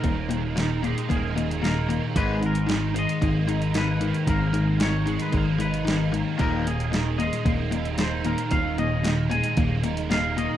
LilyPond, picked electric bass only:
\new Staff \with { instrumentName = "Picked electric bass" } { \clef bass \time 4/4 \key aes \major \tempo 4 = 113 ees,,2 ees,,2 | aes,,2 aes,,2 | aes,,2 aes,,2 | ees,,2 ees,,2 |
ees,,2 ees,,2 | }